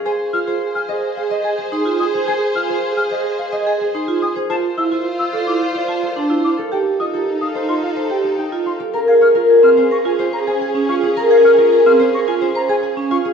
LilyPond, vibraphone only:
\new Staff \with { instrumentName = "Vibraphone" } { \time 4/4 \key f \phrygian \tempo 4 = 108 aes'16 r16 f'16 aes'16 r8 c''16 r8 ees''16 aes'16 r16 ees'16 f'16 r16 c''16 | aes'16 r16 f'16 aes'16 r8 c''16 r8 ees''16 aes'16 r16 ees'16 f'16 r16 c''16 | f'16 r16 e'16 f'16 r8 a'16 e'16 r16 c''16 f'16 r16 d'16 e'16 r16 a'16 | g'16 r16 f'16 g'16 r8 a'16 f'16 r16 c''16 g'16 r16 ees'16 f'16 r16 a'16 |
\key bes \minor bes'16 aes'16 r16 f'16 aes'16 c'16 r16 bes'16 f'16 r16 c''16 aes'16 r16 des'16 f'16 r16 | bes'16 aes'16 r16 f'16 aes'16 c'16 r16 bes'16 f'16 r16 c''16 aes'16 r16 des'16 f'16 r16 | }